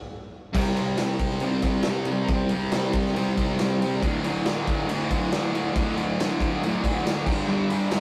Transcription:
0.53 distorted electric guitar C3 G3, kick, crash
0.58 distorted electric guitar C4
0.75 distorted electric guitar C4, ride
0.79 distorted electric guitar G3
0.97 distorted electric guitar C3 G3, snare, ride
1.02 distorted electric guitar C4
1.19 kick, ride
1.30 snare
1.40 distorted electric guitar C3 G3, ride
1.46 distorted electric guitar C4
1.62 distorted electric guitar C4, kick, ride
1.67 distorted electric guitar G3
1.82 distorted electric guitar C3, snare, ride
1.88 distorted electric guitar G3 C4
2.05 distorted electric guitar C4, ride
2.11 distorted electric guitar G3
2.28 distorted electric guitar C3 G3, kick, ride
2.33 distorted electric guitar C4
2.49 distorted electric guitar C4, ride
2.54 distorted electric guitar G3
2.72 distorted electric guitar C3 G3, snare, ride
2.77 distorted electric guitar C4
2.93 kick, ride
3.06 snare
3.14 distorted electric guitar C3 G3 C4, ride
3.36 distorted electric guitar G3 C4, kick, ride
3.57 distorted electric guitar C3 G3, snare, ride
3.61 distorted electric guitar C4
3.80 distorted electric guitar C4, ride
3.84 distorted electric guitar G3
4.01 distorted electric guitar D2 A2, kick, ride
4.05 distorted electric guitar D3
4.24 distorted electric guitar D3, ride
4.28 distorted electric guitar A2
4.45 distorted electric guitar D2 A2, snare, ride
4.50 distorted electric guitar D3
4.67 kick, ride
4.88 distorted electric guitar D2 A2, ride
4.93 distorted electric guitar D3
5.10 distorted electric guitar D3, kick, ride
5.15 distorted electric guitar A2
5.31 distorted electric guitar D2 A2, snare, ride
5.36 distorted electric guitar D3
5.53 distorted electric guitar D3, ride
5.57 distorted electric guitar A2
5.74 distorted electric guitar D2 A2, kick, ride
5.79 distorted electric guitar D3
5.97 distorted electric guitar D3, ride
6.01 distorted electric guitar A2
6.20 distorted electric guitar D2 A2, snare, ride
6.24 distorted electric guitar D3
6.40 kick, ride
6.62 distorted electric guitar D2 A2, ride
6.66 distorted electric guitar D3
6.83 distorted electric guitar D3, kick, ride
6.87 distorted electric guitar A2
7.04 distorted electric guitar D2 A2, snare, ride
7.09 distorted electric guitar D3
7.26 distorted electric guitar D3 G3, kick, crash
7.31 distorted electric guitar G2
7.47 distorted electric guitar G2 D3, transistor combo organ G4 B4 D5
7.52 distorted electric guitar G3
7.68 distorted electric guitar G3, ride
7.73 distorted electric guitar D3
7.90 distorted electric guitar G2 D3, snare, ride
7.94 distorted electric guitar G3

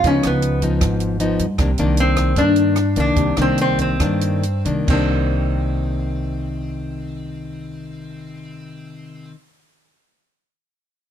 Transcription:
0.04 upright bass C#2, nylon-string guitar C#3 F3 B3 D#4, resonator guitar played with a steel bar C#4, kick, closed hi-hat
0.23 upright bass C#2, resonator guitar played with a steel bar B3, cross-stick, closed hi-hat
0.42 closed hi-hat
0.62 nylon-string guitar F3 B3 D#4, kick, closed hi-hat
0.81 upright bass G#1, nylon-string guitar G#2, kick, cross-stick, closed hi-hat
1.00 closed hi-hat
1.20 nylon-string guitar F3 B3 D#4, closed hi-hat
1.39 upright bass G2, kick, closed hi-hat
1.58 upright bass C2, nylon-string guitar C3 D#3 A#3 D4, kick, cross-stick, closed hi-hat
1.78 upright bass C2, nylon-string guitar D#3 A#3 D4, closed hi-hat
1.97 resonator guitar played with a steel bar C4, closed hi-hat
2.17 kick, cross-stick, closed hi-hat
2.36 upright bass G2, nylon-string guitar G2 D#3 A#3 D4, resonator guitar played with a steel bar D4, kick, closed hi-hat
2.56 closed hi-hat
2.76 cross-stick, closed hi-hat
2.96 upright bass C2, nylon-string guitar D#3 A#3 D4, resonator guitar played with a steel bar D4, kick, closed hi-hat
3.16 upright bass C2, nylon-string guitar C3, kick, closed hi-hat
3.37 upright bass C2, nylon-string guitar D#3 A#3 D4, cross-stick, closed hi-hat
3.42 resonator guitar played with a steel bar C4
3.58 resonator guitar played with a steel bar C4, closed hi-hat
3.78 resonator guitar played with a steel bar C4, kick, closed hi-hat
4.00 nylon-string guitar G2 D#3 A#3 D4, upright bass G2, kick, cross-stick, closed hi-hat
4.21 closed hi-hat
4.43 closed hi-hat
4.65 upright bass C2, nylon-string guitar D#3 A#3 D4, kick, closed hi-hat
4.87 upright bass C2, nylon-string guitar C3 D#3, resonator guitar played with a steel bar C4, kick, crash
4.91 nylon-string guitar A#3 D4

